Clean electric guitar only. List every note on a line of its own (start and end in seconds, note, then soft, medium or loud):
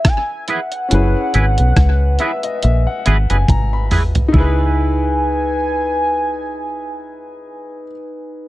0.48 0.59 E4 medium
0.48 0.59 G#4 medium
0.48 0.59 B4 medium
1.34 1.44 E4 medium
1.34 1.45 G#4 medium
1.34 1.45 B4 medium
2.20 2.30 E4 medium
2.20 2.31 G#4 medium
2.20 2.31 B4 medium
3.06 3.16 E4 medium
3.06 3.16 G#4 medium
3.06 3.16 B4 loud
3.30 3.37 E4 soft
3.30 3.36 G#4 medium
3.30 3.36 B4 medium
3.91 4.01 E4 medium
3.91 4.02 G#4 medium
3.91 4.02 B4 medium
4.33 7.90 E4 medium
4.33 7.93 G#4 medium
4.38 7.96 B4 medium